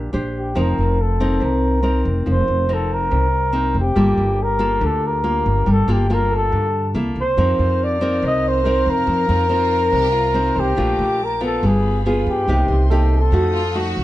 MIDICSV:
0, 0, Header, 1, 7, 480
1, 0, Start_track
1, 0, Tempo, 425230
1, 637, Time_signature, 4, 2, 24, 8
1, 15847, End_track
2, 0, Start_track
2, 0, Title_t, "String section"
2, 0, Program_c, 0, 48
2, 8315, Note_on_c, 0, 82, 80
2, 8316, Note_on_c, 0, 89, 80
2, 8320, Note_on_c, 0, 77, 70
2, 12121, Note_off_c, 0, 89, 0
2, 12123, Note_off_c, 0, 77, 0
2, 12156, Note_on_c, 0, 86, 84
2, 12158, Note_on_c, 0, 81, 70
2, 13074, Note_off_c, 0, 82, 0
2, 13109, Note_off_c, 0, 86, 0
2, 13110, Note_off_c, 0, 81, 0
2, 13130, Note_on_c, 0, 83, 77
2, 13132, Note_on_c, 0, 77, 68
2, 13133, Note_on_c, 0, 68, 76
2, 14076, Note_off_c, 0, 83, 0
2, 14077, Note_off_c, 0, 68, 0
2, 14077, Note_off_c, 0, 77, 0
2, 14087, Note_on_c, 0, 75, 61
2, 14090, Note_on_c, 0, 84, 75
2, 15034, Note_off_c, 0, 75, 0
2, 15036, Note_off_c, 0, 84, 0
2, 15046, Note_on_c, 0, 78, 68
2, 15047, Note_on_c, 0, 69, 72
2, 15049, Note_on_c, 0, 87, 80
2, 15847, Note_off_c, 0, 69, 0
2, 15847, Note_off_c, 0, 78, 0
2, 15847, Note_off_c, 0, 87, 0
2, 15847, End_track
3, 0, Start_track
3, 0, Title_t, "Flugelhorn"
3, 0, Program_c, 1, 56
3, 0, Note_on_c, 1, 70, 90
3, 177, Note_off_c, 1, 70, 0
3, 431, Note_on_c, 1, 67, 73
3, 664, Note_on_c, 1, 70, 93
3, 681, Note_off_c, 1, 67, 0
3, 1141, Note_on_c, 1, 69, 80
3, 1158, Note_off_c, 1, 70, 0
3, 1622, Note_on_c, 1, 70, 83
3, 1639, Note_off_c, 1, 69, 0
3, 2330, Note_off_c, 1, 70, 0
3, 2588, Note_on_c, 1, 72, 94
3, 3084, Note_on_c, 1, 69, 88
3, 3101, Note_off_c, 1, 72, 0
3, 3306, Note_on_c, 1, 70, 107
3, 3323, Note_off_c, 1, 69, 0
3, 4253, Note_off_c, 1, 70, 0
3, 4284, Note_on_c, 1, 67, 95
3, 4995, Note_on_c, 1, 70, 95
3, 5012, Note_off_c, 1, 67, 0
3, 5473, Note_on_c, 1, 69, 84
3, 5490, Note_off_c, 1, 70, 0
3, 5720, Note_on_c, 1, 70, 88
3, 5737, Note_off_c, 1, 69, 0
3, 6420, Note_off_c, 1, 70, 0
3, 6449, Note_on_c, 1, 69, 93
3, 6680, Note_on_c, 1, 67, 84
3, 6697, Note_off_c, 1, 69, 0
3, 6921, Note_on_c, 1, 70, 98
3, 6938, Note_off_c, 1, 67, 0
3, 7141, Note_off_c, 1, 70, 0
3, 7177, Note_on_c, 1, 69, 100
3, 7824, Note_off_c, 1, 69, 0
3, 8132, Note_on_c, 1, 72, 97
3, 8845, Note_on_c, 1, 74, 100
3, 8862, Note_off_c, 1, 72, 0
3, 9303, Note_off_c, 1, 74, 0
3, 9330, Note_on_c, 1, 75, 95
3, 9573, Note_on_c, 1, 72, 91
3, 9590, Note_off_c, 1, 75, 0
3, 10049, Note_on_c, 1, 70, 122
3, 10066, Note_off_c, 1, 72, 0
3, 11960, Note_on_c, 1, 67, 97
3, 11977, Note_off_c, 1, 70, 0
3, 12689, Note_on_c, 1, 70, 87
3, 12706, Note_off_c, 1, 67, 0
3, 12905, Note_off_c, 1, 70, 0
3, 12912, Note_on_c, 1, 69, 94
3, 13166, Note_on_c, 1, 68, 87
3, 13182, Note_off_c, 1, 69, 0
3, 13559, Note_off_c, 1, 68, 0
3, 13881, Note_on_c, 1, 67, 91
3, 14536, Note_off_c, 1, 67, 0
3, 14836, Note_on_c, 1, 69, 89
3, 15733, Note_off_c, 1, 69, 0
3, 15847, End_track
4, 0, Start_track
4, 0, Title_t, "Grand piano"
4, 0, Program_c, 2, 0
4, 637, Note_on_c, 2, 72, 38
4, 871, Control_c, 2, 64, 127
4, 2385, Note_off_c, 2, 72, 0
4, 4470, Note_on_c, 2, 67, 45
4, 4492, Control_c, 2, 64, 0
4, 4681, Control_c, 2, 64, 127
4, 6222, Note_off_c, 2, 67, 0
4, 7121, Note_on_c, 2, 69, 55
4, 7854, Control_c, 2, 64, 0
4, 8036, Note_off_c, 2, 69, 0
4, 8532, Control_c, 2, 64, 127
4, 9752, Note_on_c, 2, 70, 49
4, 11504, Note_off_c, 2, 70, 0
4, 11913, Note_on_c, 2, 72, 53
4, 12178, Control_c, 2, 64, 0
4, 12363, Note_off_c, 2, 72, 0
4, 12405, Control_c, 2, 64, 127
4, 13138, Control_c, 2, 64, 0
4, 14312, Control_c, 2, 64, 127
4, 14564, Note_on_c, 2, 69, 58
4, 15057, Control_c, 2, 64, 0
4, 15237, Note_off_c, 2, 69, 0
4, 15847, End_track
5, 0, Start_track
5, 0, Title_t, "Violin section"
5, 0, Program_c, 3, 48
5, 10477, Note_on_c, 3, 65, 74
5, 10691, Note_off_c, 3, 65, 0
5, 10705, Note_on_c, 3, 65, 84
5, 11159, Note_off_c, 3, 65, 0
5, 11189, Note_on_c, 3, 67, 100
5, 11418, Note_off_c, 3, 67, 0
5, 11418, Note_on_c, 3, 65, 90
5, 11790, Note_off_c, 3, 65, 0
5, 15266, Note_on_c, 3, 65, 97
5, 15496, Note_off_c, 3, 65, 0
5, 15516, Note_on_c, 3, 66, 106
5, 15847, Note_off_c, 3, 66, 0
5, 15847, End_track
6, 0, Start_track
6, 0, Title_t, "Nylon-string guitar"
6, 0, Program_c, 4, 24
6, 0, Note_on_c, 4, 46, 52
6, 0, Note_on_c, 4, 62, 49
6, 0, Note_on_c, 4, 67, 50
6, 121, Note_off_c, 4, 62, 0
6, 123, Note_off_c, 4, 67, 0
6, 132, Note_off_c, 4, 46, 0
6, 144, Note_on_c, 4, 62, 53
6, 152, Note_on_c, 4, 67, 52
6, 156, Note_on_c, 4, 72, 58
6, 593, Note_off_c, 4, 62, 0
6, 594, Note_off_c, 4, 67, 0
6, 598, Note_off_c, 4, 72, 0
6, 622, Note_on_c, 4, 53, 54
6, 627, Note_on_c, 4, 60, 58
6, 629, Note_on_c, 4, 63, 54
6, 637, Note_on_c, 4, 70, 63
6, 1108, Note_off_c, 4, 60, 0
6, 1111, Note_off_c, 4, 63, 0
6, 1112, Note_off_c, 4, 70, 0
6, 1359, Note_on_c, 4, 60, 64
6, 1363, Note_on_c, 4, 63, 69
6, 1369, Note_on_c, 4, 70, 63
6, 1567, Note_off_c, 4, 53, 0
6, 1583, Note_on_c, 4, 48, 52
6, 2040, Note_off_c, 4, 60, 0
6, 2042, Note_off_c, 4, 63, 0
6, 2043, Note_off_c, 4, 70, 0
6, 2061, Note_on_c, 4, 60, 52
6, 2067, Note_on_c, 4, 63, 52
6, 2073, Note_on_c, 4, 70, 58
6, 2527, Note_off_c, 4, 48, 0
6, 2550, Note_on_c, 4, 53, 50
6, 2991, Note_off_c, 4, 60, 0
6, 2994, Note_off_c, 4, 63, 0
6, 2997, Note_off_c, 4, 70, 0
6, 3034, Note_on_c, 4, 60, 49
6, 3039, Note_on_c, 4, 63, 53
6, 3041, Note_on_c, 4, 70, 56
6, 3490, Note_off_c, 4, 53, 0
6, 3509, Note_on_c, 4, 48, 51
6, 3682, Note_off_c, 4, 60, 0
6, 3683, Note_off_c, 4, 63, 0
6, 3685, Note_off_c, 4, 70, 0
6, 3979, Note_on_c, 4, 60, 55
6, 3985, Note_on_c, 4, 63, 57
6, 3987, Note_on_c, 4, 70, 61
6, 4298, Note_off_c, 4, 60, 0
6, 4300, Note_off_c, 4, 63, 0
6, 4302, Note_off_c, 4, 70, 0
6, 4450, Note_off_c, 4, 48, 0
6, 4465, Note_on_c, 4, 55, 57
6, 4472, Note_on_c, 4, 65, 58
6, 4473, Note_on_c, 4, 58, 59
6, 4479, Note_on_c, 4, 69, 60
6, 4951, Note_off_c, 4, 58, 0
6, 4953, Note_off_c, 4, 65, 0
6, 4956, Note_off_c, 4, 69, 0
6, 5180, Note_on_c, 4, 58, 57
6, 5185, Note_on_c, 4, 65, 68
6, 5195, Note_on_c, 4, 69, 68
6, 5410, Note_off_c, 4, 55, 0
6, 5424, Note_on_c, 4, 50, 52
6, 5871, Note_off_c, 4, 58, 0
6, 5874, Note_off_c, 4, 65, 0
6, 5879, Note_off_c, 4, 69, 0
6, 5912, Note_on_c, 4, 58, 59
6, 5916, Note_on_c, 4, 65, 53
6, 6368, Note_off_c, 4, 50, 0
6, 6391, Note_on_c, 4, 55, 58
6, 6393, Note_off_c, 4, 58, 0
6, 6394, Note_off_c, 4, 65, 0
6, 6635, Note_on_c, 4, 58, 56
6, 6642, Note_on_c, 4, 65, 61
6, 6648, Note_on_c, 4, 69, 68
6, 6839, Note_off_c, 4, 58, 0
6, 6843, Note_off_c, 4, 65, 0
6, 6845, Note_off_c, 4, 69, 0
6, 6884, Note_on_c, 4, 58, 57
6, 6890, Note_on_c, 4, 65, 55
6, 6895, Note_on_c, 4, 69, 63
6, 7332, Note_off_c, 4, 55, 0
6, 7360, Note_on_c, 4, 50, 54
6, 7528, Note_off_c, 4, 58, 0
6, 7531, Note_off_c, 4, 65, 0
6, 7533, Note_off_c, 4, 69, 0
6, 7816, Note_off_c, 4, 50, 0
6, 7841, Note_on_c, 4, 58, 55
6, 7847, Note_on_c, 4, 64, 60
6, 7852, Note_on_c, 4, 69, 54
6, 8150, Note_off_c, 4, 58, 0
6, 8153, Note_off_c, 4, 64, 0
6, 8156, Note_off_c, 4, 69, 0
6, 8325, Note_on_c, 4, 53, 52
6, 8329, Note_on_c, 4, 60, 59
6, 8331, Note_on_c, 4, 63, 54
6, 8334, Note_on_c, 4, 70, 54
6, 9006, Note_off_c, 4, 60, 0
6, 9006, Note_off_c, 4, 63, 0
6, 9009, Note_off_c, 4, 70, 0
6, 9042, Note_on_c, 4, 60, 62
6, 9048, Note_on_c, 4, 63, 60
6, 9056, Note_on_c, 4, 70, 71
6, 9260, Note_off_c, 4, 53, 0
6, 9288, Note_on_c, 4, 48, 50
6, 9723, Note_off_c, 4, 60, 0
6, 9727, Note_off_c, 4, 63, 0
6, 9730, Note_off_c, 4, 70, 0
6, 9766, Note_on_c, 4, 60, 54
6, 9773, Note_on_c, 4, 63, 51
6, 9779, Note_on_c, 4, 70, 62
6, 10221, Note_off_c, 4, 48, 0
6, 10237, Note_on_c, 4, 53, 56
6, 10446, Note_off_c, 4, 60, 0
6, 10449, Note_off_c, 4, 63, 0
6, 10452, Note_off_c, 4, 70, 0
6, 10483, Note_on_c, 4, 60, 56
6, 10489, Note_on_c, 4, 63, 58
6, 10495, Note_on_c, 4, 70, 59
6, 10685, Note_off_c, 4, 60, 0
6, 10686, Note_off_c, 4, 63, 0
6, 10687, Note_off_c, 4, 70, 0
6, 10716, Note_on_c, 4, 60, 54
6, 10724, Note_on_c, 4, 63, 56
6, 10731, Note_on_c, 4, 70, 59
6, 11176, Note_off_c, 4, 53, 0
6, 11196, Note_on_c, 4, 48, 54
6, 11364, Note_off_c, 4, 60, 0
6, 11369, Note_off_c, 4, 63, 0
6, 11370, Note_off_c, 4, 70, 0
6, 11673, Note_on_c, 4, 60, 57
6, 11679, Note_on_c, 4, 63, 50
6, 11685, Note_on_c, 4, 70, 68
6, 12119, Note_off_c, 4, 60, 0
6, 12122, Note_off_c, 4, 63, 0
6, 12124, Note_off_c, 4, 70, 0
6, 12135, Note_off_c, 4, 48, 0
6, 12151, Note_on_c, 4, 46, 58
6, 12158, Note_on_c, 4, 57, 49
6, 12165, Note_on_c, 4, 62, 53
6, 12166, Note_on_c, 4, 65, 68
6, 12637, Note_off_c, 4, 57, 0
6, 12639, Note_off_c, 4, 62, 0
6, 12641, Note_off_c, 4, 65, 0
6, 12876, Note_on_c, 4, 59, 64
6, 12879, Note_on_c, 4, 65, 66
6, 13092, Note_off_c, 4, 46, 0
6, 13131, Note_on_c, 4, 55, 50
6, 13561, Note_off_c, 4, 59, 0
6, 13561, Note_off_c, 4, 65, 0
6, 13612, Note_on_c, 4, 59, 59
6, 13620, Note_on_c, 4, 68, 61
6, 13622, Note_on_c, 4, 65, 56
6, 14062, Note_off_c, 4, 55, 0
6, 14068, Note_off_c, 4, 59, 0
6, 14071, Note_off_c, 4, 65, 0
6, 14072, Note_off_c, 4, 68, 0
6, 14094, Note_on_c, 4, 48, 56
6, 14094, Note_on_c, 4, 58, 56
6, 14101, Note_on_c, 4, 63, 53
6, 14103, Note_on_c, 4, 67, 62
6, 14529, Note_off_c, 4, 58, 0
6, 14531, Note_off_c, 4, 63, 0
6, 14531, Note_off_c, 4, 67, 0
6, 14571, Note_on_c, 4, 58, 53
6, 14577, Note_on_c, 4, 63, 57
6, 14579, Note_on_c, 4, 67, 67
6, 14890, Note_off_c, 4, 58, 0
6, 14890, Note_off_c, 4, 63, 0
6, 14893, Note_off_c, 4, 67, 0
6, 15025, Note_off_c, 4, 48, 0
6, 15040, Note_on_c, 4, 53, 59
6, 15042, Note_on_c, 4, 57, 53
6, 15050, Note_on_c, 4, 63, 53
6, 15052, Note_on_c, 4, 66, 61
6, 15350, Note_off_c, 4, 57, 0
6, 15352, Note_off_c, 4, 63, 0
6, 15356, Note_off_c, 4, 66, 0
6, 15521, Note_on_c, 4, 57, 60
6, 15526, Note_on_c, 4, 63, 56
6, 15530, Note_on_c, 4, 66, 59
6, 15831, Note_off_c, 4, 57, 0
6, 15832, Note_off_c, 4, 63, 0
6, 15832, Note_off_c, 4, 66, 0
6, 15847, Note_off_c, 4, 53, 0
6, 15847, End_track
7, 0, Start_track
7, 0, Title_t, "Upright bass"
7, 0, Program_c, 5, 32
7, 0, Note_on_c, 5, 34, 81
7, 138, Note_off_c, 5, 34, 0
7, 156, Note_on_c, 5, 34, 87
7, 603, Note_off_c, 5, 34, 0
7, 641, Note_on_c, 5, 29, 94
7, 862, Note_off_c, 5, 29, 0
7, 883, Note_on_c, 5, 29, 79
7, 1555, Note_off_c, 5, 29, 0
7, 1598, Note_on_c, 5, 36, 87
7, 2273, Note_off_c, 5, 36, 0
7, 2317, Note_on_c, 5, 29, 84
7, 2541, Note_off_c, 5, 29, 0
7, 2560, Note_on_c, 5, 29, 92
7, 2782, Note_off_c, 5, 29, 0
7, 2798, Note_on_c, 5, 29, 81
7, 3473, Note_off_c, 5, 29, 0
7, 3515, Note_on_c, 5, 36, 89
7, 4192, Note_off_c, 5, 36, 0
7, 4226, Note_on_c, 5, 29, 82
7, 4455, Note_off_c, 5, 29, 0
7, 4474, Note_on_c, 5, 31, 94
7, 4700, Note_off_c, 5, 31, 0
7, 4713, Note_on_c, 5, 31, 84
7, 5391, Note_off_c, 5, 31, 0
7, 5433, Note_on_c, 5, 38, 89
7, 6111, Note_off_c, 5, 38, 0
7, 6162, Note_on_c, 5, 31, 89
7, 6384, Note_off_c, 5, 31, 0
7, 6403, Note_on_c, 5, 31, 98
7, 6625, Note_off_c, 5, 31, 0
7, 6636, Note_on_c, 5, 31, 88
7, 7314, Note_off_c, 5, 31, 0
7, 7367, Note_on_c, 5, 43, 86
7, 7810, Note_off_c, 5, 43, 0
7, 7839, Note_on_c, 5, 36, 89
7, 8063, Note_off_c, 5, 36, 0
7, 8079, Note_on_c, 5, 36, 84
7, 8303, Note_off_c, 5, 36, 0
7, 8324, Note_on_c, 5, 41, 92
7, 8546, Note_off_c, 5, 41, 0
7, 8566, Note_on_c, 5, 41, 80
7, 9239, Note_off_c, 5, 41, 0
7, 9284, Note_on_c, 5, 36, 86
7, 9958, Note_off_c, 5, 36, 0
7, 10005, Note_on_c, 5, 41, 85
7, 10227, Note_off_c, 5, 41, 0
7, 10236, Note_on_c, 5, 41, 88
7, 10462, Note_off_c, 5, 41, 0
7, 10483, Note_on_c, 5, 41, 90
7, 11157, Note_off_c, 5, 41, 0
7, 11202, Note_on_c, 5, 36, 85
7, 11877, Note_off_c, 5, 36, 0
7, 11921, Note_on_c, 5, 36, 91
7, 12145, Note_off_c, 5, 36, 0
7, 12168, Note_on_c, 5, 34, 87
7, 12388, Note_off_c, 5, 34, 0
7, 12402, Note_on_c, 5, 34, 83
7, 13077, Note_off_c, 5, 34, 0
7, 13126, Note_on_c, 5, 31, 90
7, 13799, Note_off_c, 5, 31, 0
7, 13845, Note_on_c, 5, 43, 85
7, 14067, Note_off_c, 5, 43, 0
7, 14083, Note_on_c, 5, 36, 87
7, 14306, Note_off_c, 5, 36, 0
7, 14315, Note_on_c, 5, 36, 86
7, 14992, Note_off_c, 5, 36, 0
7, 15035, Note_on_c, 5, 41, 88
7, 15712, Note_off_c, 5, 41, 0
7, 15768, Note_on_c, 5, 36, 85
7, 15847, Note_off_c, 5, 36, 0
7, 15847, End_track
0, 0, End_of_file